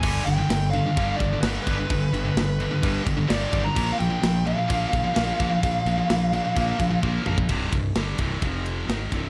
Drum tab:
CC |x-x-x-x-x-x-x-x-|x-x-x-x-x-x-x-x-|x-x-x-x-x-x-x-x-|x-x-x-x-x-x-----|
RD |----------------|----------------|----------------|----------------|
SD |----o-------o---|----o-------o---|----o-------o---|----o-----------|
T2 |----------------|----------------|----------------|--------------o-|
BD |o-------o-o---o-|o-------o-o---o-|o-------o-o---o-|o-------o-o-o--o|

CC |----------------|
RD |x-x-x-x-x-x-x-x-|
SD |----o-------o-o-|
T2 |----------------|
BD |o-o---o-o-----o-|